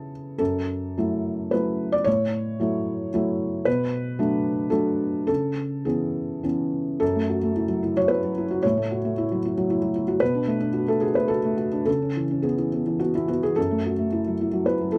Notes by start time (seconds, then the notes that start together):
Already playing: C#3 E3 B3 E4 G#4 A4
0.38 F#2 A4
0.97 F#3 A3 E4
1.51 F#3 A3 E4 B4
1.92 D5
2.04 A2 C#5
2.60 F#3 A3 E4
3.14 F#3 A3 E4
3.65 B2 B4
4.19 F#3 A3 D4
4.70 F#3 A3 D4 A4
5.27 C#3 A4
5.85 E3 B3 C#4 G#4
6.43 E3 B3 C#4
7.00 F#2 A4
7.16 A3
7.29 F#4
7.43 A3
7.56 E4
7.68 F#3
7.83 E4
7.97 F#3 C#5
8.08 E4 B4
8.24 F#3
8.38 E4
8.51 F#4
8.63 A2 C#5
8.77 A3
8.91 F#4
9.05 A3
9.18 E4
9.32 F#3
9.45 E4
9.58 F#3
9.70 E4
9.82 F#3
9.95 E4
10.08 F#4
10.20 B2 B4
10.35 D4
10.47 A3
10.60 D4
10.73 F#4
10.88 A3 A4
11.01 F#4 G#4
11.15 A3 B4
11.28 F#4 A4
11.44 A3
11.57 F#4
11.72 D4
11.85 C#3 A4
12.02 C#4
12.17 E3
12.31 C#4
12.42 B3 G#4
12.58 E3
12.73 B3
12.87 E3
12.99 B3 F#4
13.15 E3 E4
13.28 B3 F#4
13.43 E3 G#4
13.56 F#2 A4
13.71 A3
13.86 F#4
13.98 A3
14.12 E4
14.27 F#3
14.41 E4
14.53 F#3
14.66 E4 B4
14.81 F#3
14.92 E4 A4